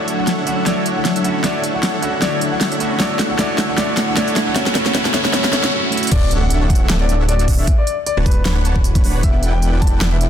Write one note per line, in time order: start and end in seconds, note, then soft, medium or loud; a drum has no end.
0.00 1.43 D3 medium
0.00 1.42 F#3 medium
0.00 0.43 A3 medium
0.00 0.35 D4 medium
0.00 0.45 E4 medium
0.00 0.46 F#4 medium
0.00 0.35 A4 medium
0.00 0.35 C#5 medium
0.00 0.44 C#5 medium
0.00 1.43 C#5 medium
0.00 0.35 E5 medium
0.00 0.35 F#5 medium
0.00 riser medium
0.08 closed hi-hat medium
0.18 0.35 F#5 medium
0.27 snare soft
0.27 closed hi-hat medium
0.38 0.64 D4 medium
0.38 0.64 A4 medium
0.38 0.64 C#5 medium
0.38 0.64 E5 medium
0.38 0.64 F#5 loud
0.44 0.63 A3 medium
0.44 0.64 C#4 medium
0.44 0.65 E4 medium
0.44 0.64 F#5 medium
0.44 closed hi-hat medium
0.49 0.66 F#4 medium
0.64 1.21 A3 medium
0.64 1.13 D4 medium
0.64 1.23 E4 medium
0.64 1.23 F#4 loud
0.64 1.13 A4 medium
0.64 1.22 C#5 medium
0.64 1.13 C#5 medium
0.64 0.83 D5 medium
0.64 1.13 E5 medium
0.64 1.13 F#5 medium
0.64 snare medium
0.64 closed hi-hat medium
0.86 closed hi-hat medium
0.96 1.12 F#5 medium
1.05 snare medium
1.05 closed hi-hat medium
1.16 1.42 D4 medium
1.16 1.42 A4 medium
1.16 1.42 C#5 medium
1.16 1.42 E5 medium
1.16 1.42 F#5 loud
1.16 closed hi-hat medium
1.22 1.41 A3 medium
1.22 1.42 C#4 medium
1.22 1.43 E4 medium
1.22 1.41 F#5 medium
1.22 closed hi-hat medium
1.26 1.44 F#4 medium
1.42 2.98 D3 medium
1.42 1.99 A3 medium
1.42 2.98 B3 medium
1.42 1.91 D4 medium
1.42 2.01 E4 medium
1.42 1.91 A4 medium
1.42 2.98 A4 medium
1.42 2.00 C#5 medium
1.42 1.91 C#5 medium
1.42 2.98 C#5 medium
1.42 1.61 D5 medium
1.42 1.91 E5 medium
1.42 1.91 F#5 medium
1.42 snare medium
1.42 closed hi-hat medium
1.46 2.01 F#4 loud
1.64 closed hi-hat medium
1.74 1.90 F#5 medium
1.83 snare medium
1.83 closed hi-hat medium
1.94 2.20 D4 medium
1.94 2.20 A4 medium
1.94 2.20 C#5 medium
1.94 2.20 E5 medium
1.94 2.20 F#5 loud
2.00 2.18 A3 medium
2.00 2.20 C#4 medium
2.00 2.20 E4 medium
2.00 2.21 F#4 medium
2.00 2.19 F#5 medium
2.00 closed hi-hat medium
2.20 2.77 A3 medium
2.20 2.69 D4 medium
2.20 2.78 E4 medium
2.20 2.79 F#4 loud
2.20 2.69 A4 medium
2.20 2.78 C#5 medium
2.20 2.69 C#5 medium
2.20 2.38 D5 loud
2.20 2.69 E5 medium
2.20 2.69 F#5 medium
2.20 snare medium
2.20 closed hi-hat medium
2.41 closed hi-hat medium
2.52 2.68 F#5 medium
2.61 snare medium
2.61 closed hi-hat medium
2.71 2.98 D4 medium
2.71 2.98 A4 medium
2.71 2.98 C#5 medium
2.71 2.98 E5 medium
2.71 2.98 F#5 loud
2.71 closed hi-hat medium
2.78 2.96 A3 medium
2.78 2.98 C#4 medium
2.78 2.99 E4 medium
2.78 2.99 F#4 medium
2.78 2.97 F#5 medium
2.78 closed hi-hat medium
2.98 4.54 G3 medium
2.98 3.35 A3 medium
2.98 3.37 D4 medium
2.98 5.70 E4 medium
2.98 3.38 E4 medium
2.98 3.38 F#4 loud
2.98 3.37 A4 medium
2.98 3.37 C#5 medium
2.98 3.17 D5 medium
2.98 3.37 E5 medium
2.98 3.37 F#5 medium
2.98 snare medium
2.98 closed hi-hat medium
3.19 snare medium
3.19 closed hi-hat medium
3.30 3.37 F#5 medium
3.36 3.74 A3 loud
3.36 3.76 D4 medium
3.36 3.77 E4 medium
3.36 3.76 A4 medium
3.36 3.76 C#5 medium
3.36 3.56 D5 loud
3.36 3.76 E5 medium
3.36 3.76 F#5 medium
3.36 snare medium
3.36 closed hi-hat medium
3.41 3.77 F#4 loud
3.58 snare medium
3.58 closed hi-hat medium
3.69 3.76 F#5 medium
3.76 4.13 A3 medium
3.76 4.15 D4 medium
3.76 4.16 E4 medium
3.76 4.15 A4 medium
3.76 4.15 C#5 medium
3.76 3.95 D5 loud
3.76 4.15 E5 medium
3.76 4.15 F#5 medium
3.76 snare medium
3.76 closed hi-hat medium
3.80 4.16 F#4 loud
3.97 snare medium
3.97 closed hi-hat medium
4.08 4.16 F#5 medium
4.15 4.52 A3 loud
4.15 4.54 D4 medium
4.15 4.55 E4 medium
4.15 4.55 F#4 loud
4.15 4.54 A4 medium
4.15 4.54 C#5 medium
4.15 4.33 D5 loud
4.15 4.54 E5 medium
4.15 4.54 F#5 medium
4.15 snare medium
4.15 closed hi-hat medium
4.28 closed hi-hat medium
4.36 snare medium
4.36 closed hi-hat medium
4.47 4.54 F#5 loud
4.54 5.71 F#3 medium
4.54 4.72 A3 medium
4.54 4.73 C#4 medium
4.54 4.74 C#4 medium
4.54 4.74 E4 medium
4.54 5.71 A4 medium
4.54 4.74 A4 medium
4.54 4.72 C#5 loud
4.54 4.74 C#5 medium
4.54 4.74 E5 medium
4.54 4.74 F#5 medium
4.54 snare medium
4.54 closed hi-hat medium
4.58 4.75 F#4 loud
4.66 snare medium
4.73 4.91 A3 loud
4.73 4.93 C#4 medium
4.73 4.94 E4 medium
4.73 4.94 F#4 loud
4.73 4.93 A4 medium
4.73 4.93 C#5 medium
4.73 4.92 C#5 loud
4.73 4.93 E5 medium
4.73 4.93 F#5 medium
4.73 snare loud
4.73 closed hi-hat medium
4.86 snare medium
4.92 5.11 A3 loud
4.92 5.12 C#4 medium
4.92 5.13 C#4 medium
4.92 5.13 E4 medium
4.92 5.13 A4 medium
4.92 5.13 C#5 medium
4.92 5.11 C#5 loud
4.92 5.13 E5 medium
4.92 5.13 F#5 medium
4.92 snare loud
4.92 closed hi-hat medium
4.96 5.14 F#4 loud
5.05 snare medium
5.12 5.30 A3 loud
5.12 5.32 C#4 medium
5.12 5.33 E4 medium
5.12 5.32 A4 medium
5.12 5.32 C#5 medium
5.12 5.31 C#5 loud
5.12 5.32 E5 medium
5.12 5.32 F#5 medium
5.12 snare loud
5.12 closed hi-hat medium
5.16 5.33 F#4 loud
5.25 snare medium
5.32 5.50 A3 loud
5.32 5.51 C#4 medium
5.32 5.52 C#4 medium
5.32 5.52 E4 medium
5.32 5.53 F#4 loud
5.32 5.52 A4 medium
5.32 5.50 C#5 loud
5.32 5.52 C#5 medium
5.32 5.52 E5 medium
5.32 5.52 F#5 medium
5.32 snare loud
5.32 closed hi-hat medium
5.44 snare loud
5.51 5.69 A3 loud
5.51 5.71 C#4 medium
5.51 5.72 E4 medium
5.51 5.71 A4 medium
5.51 5.71 C#5 medium
5.51 5.70 C#5 loud
5.51 5.71 E5 medium
5.51 5.71 F#5 medium
5.51 snare loud
5.51 closed hi-hat medium
5.55 5.72 F#4 loud
5.64 snare medium
5.71 5.89 A3 loud
5.71 5.90 C#4 medium
5.71 5.91 E4 medium
5.75 5.92 F#4 loud
5.90 6.09 A3 medium
5.90 6.10 C#4 medium
5.90 6.10 E4 medium
5.90 closed hi-hat medium
5.94 6.11 F#4 loud
5.94 closed hi-hat medium
6.03 closed hi-hat medium
6.07 closed hi-hat medium
6.11 6.59 D1 loud
6.11 6.59 D4 medium
6.11 6.59 A4 medium
6.11 6.59 C#5 medium
6.11 6.28 D5 loud
6.11 6.59 E5 medium
6.11 6.59 F#5 medium
6.11 kick loud
6.11 closed hi-hat medium
6.11 crash loud
6.11 impact medium
6.31 closed hi-hat medium
6.42 6.58 F#5 medium
6.50 closed hi-hat medium
6.61 6.88 D1 medium
6.61 6.87 D4 loud
6.61 6.87 A4 medium
6.61 6.87 C#5 medium
6.61 6.87 E5 medium
6.61 6.87 F#5 loud
6.70 6.87 F#5 medium
6.70 kick loud
6.70 closed hi-hat medium
6.75 closed hi-hat medium
6.89 7.65 D1 loud
6.89 7.66 D4 medium
6.89 7.66 A4 medium
6.89 7.66 C#5 medium
6.89 7.66 E5 medium
6.89 7.66 F#5 medium
6.89 snare loud
6.89 closed hi-hat medium
7.00 7.16 D5 medium
7.09 closed hi-hat medium
7.29 7.45 D5 medium
7.29 closed hi-hat medium
7.39 closed hi-hat medium
7.48 kick medium
7.48 open hi-hat loud
7.59 7.69 E5 medium
7.67 kick loud
7.67 closed hi-hat medium
7.78 7.94 D5 medium
7.87 closed hi-hat medium
8.06 8.18 D5 medium
8.06 closed hi-hat medium
8.17 8.44 D1 medium
8.17 8.26 D4 medium
8.17 8.26 B4 medium
8.17 8.26 C#5 medium
8.17 8.26 F#5 medium
8.17 8.26 A5 medium
8.26 9.16 B4 loud
8.26 kick loud
8.26 closed hi-hat medium
8.31 closed hi-hat medium
8.45 8.63 D1 loud
8.45 8.63 D4 medium
8.45 8.63 B4 medium
8.45 8.63 C#5 medium
8.45 8.63 F#5 medium
8.45 8.63 B5 loud
8.45 snare loud
8.45 closed hi-hat medium
8.65 8.93 D1 loud
8.65 8.76 D4 medium
8.65 8.76 B4 medium
8.65 8.76 C#5 medium
8.65 8.76 F#5 medium
8.65 8.76 A5 medium
8.65 closed hi-hat medium
8.76 kick medium
8.84 closed hi-hat medium
8.95 9.22 D1 loud
8.95 9.21 D4 medium
8.95 9.21 B4 medium
8.95 9.21 C#5 medium
8.95 9.21 F#5 medium
8.95 9.21 B5 loud
8.95 kick loud
8.95 closed hi-hat medium
9.04 open hi-hat medium
9.23 9.71 E1 loud
9.23 9.70 E4 medium
9.23 9.70 B4 medium
9.23 9.71 D5 medium
9.23 9.40 E5 loud
9.23 9.71 F#5 medium
9.23 9.70 G5 medium
9.23 kick loud
9.23 closed hi-hat medium
9.43 closed hi-hat medium
9.53 9.69 G5 medium
9.62 closed hi-hat medium
9.73 9.99 E1 medium
9.73 9.99 E4 loud
9.73 9.99 B4 medium
9.73 9.99 D5 medium
9.73 9.99 F#5 medium
9.73 9.99 G5 loud
9.81 9.98 A5 loud
9.81 kick loud
9.81 closed hi-hat soft
9.87 closed hi-hat medium
10.01 10.29 E1 loud
10.01 10.29 E4 medium
10.01 10.29 B4 medium
10.01 10.29 D5 medium
10.01 10.29 F#5 medium
10.01 10.29 G5 medium
10.01 snare loud
10.01 closed hi-hat medium
10.12 10.28 E5 medium
10.21 closed hi-hat medium